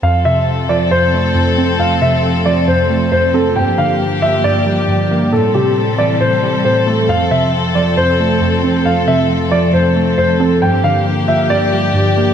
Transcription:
<<
  \new Staff \with { instrumentName = "Grand piano" } { \time 4/4 \key f \major \tempo 4 = 136 f''8 e''8 r8 d''8 c''2 | f''8 e''8 r8 d''8 c''4 c''8 a'8 | g''8 f''8 r8 e''8 d''2 | a'8 g'8 r8 d''8 c''4 c''8 a'8 |
f''8 e''8 r8 d''8 c''2 | f''8 e''8 r8 d''8 c''4 c''8 a'8 | g''8 f''8 r8 e''8 d''2 | }
  \new Staff \with { instrumentName = "String section" } { \time 4/4 \key f \major << { <c' a'>1~ | <c' a'>1 | <bes g'>1 | <c' a'>1~ |
<c' a'>1~ | <c' a'>1 | <bes g'>1 | } \\ { f1~ | f1~ | f1 | g1 |
f1~ | f1~ | f1 | } >> }
  \new Staff \with { instrumentName = "Synth keys" } { \clef bass \time 4/4 \key f \major f,8 c4 f8 f,8 a8 f,8 c'8 | f,8 c4 f8 f,8 a8 f,8 c'8 | g,8 d4 f8 g,8 g8 g,8 bes8 | a,8 c4 e8 a,8 g8 a,8 a8 |
f,8 c4 f8 f,8 a8 f,8 c'8 | f,8 c4 f8 f,8 a8 f,8 c'8 | g,8 d4 f8 g,8 g8 g,8 bes8 | }
>>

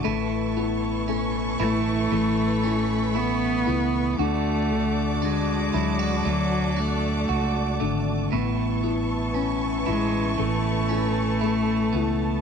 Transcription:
<<
  \new Staff \with { instrumentName = "String section" } { \time 4/4 \key a \major \tempo 4 = 58 << { <e' b' cis'''>1 | <fis' d'' d'''>1 | <e' b' cis'''>1 | } \\ { a''2 b''2 | a''1 | a''1 | } >> }
  \new Staff \with { instrumentName = "Clean electric guitar" } { \time 4/4 \key a \major <a, e'>8 b8 cis'8 e'8 e8 cis'8 e'8 b8 | fis'4 d'8 e'16 fis'16 a8 d'8 fis'8 a8 | <a, e'>8 b8 cis'8 e'8 e8 cis'8 e'8 b8 | }
  \new Staff \with { instrumentName = "Felt piano" } { \time 4/4 \key a \major a8 e'8 a8 e'8 a8 e'8 a8 e'8 | d'8 d8 d8 fis2 d8 | b8 e'8 cis'8 e'8 a8 e'8 a8 e'8 | }
  \new Staff \with { instrumentName = "Cello" } { \time 4/4 \key a \major r4. a4. b4 | a4 gis4 fis8 a4 r8 | r4. gis8 a2 | }
  \new Staff \with { instrumentName = "Fretless electric bass" } { \clef bass \time 4/4 \key a \major a,,4. a,,8 a,,4. cis,8 | d,4. d,8 d,4 cis,8 gis,,8 | a,,4. a,,8 a,,4. cis,8 | }
>>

